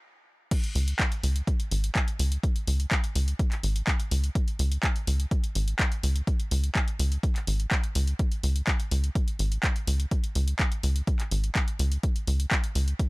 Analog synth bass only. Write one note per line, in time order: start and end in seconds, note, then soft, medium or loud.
0.75 0.94 C#2 loud
1.23 1.42 C#2 loud
1.71 1.90 G#1 loud
2.19 2.38 C#2 loud
2.67 2.86 C#2 medium
3.15 3.34 C#2 loud
3.63 3.82 G#1 loud
4.11 4.30 C#2 loud
4.59 4.78 C#2 loud
5.07 5.26 C#2 loud
5.55 5.74 G#1 loud
6.03 6.22 C#2 loud
6.51 6.70 C#2 loud
6.99 7.18 C#2 loud
7.47 7.66 G#1 loud
7.95 8.14 C#2 loud
8.43 8.62 C#2 medium
8.91 9.10 C#2 loud
9.39 9.58 G#1 medium
9.87 10.06 C#2 loud
10.36 10.54 C#2 loud
10.83 11.02 C#2 loud
11.31 11.50 G#1 loud
11.79 11.98 C#2 loud
12.27 12.46 C#2 loud
12.75 12.94 C#2 loud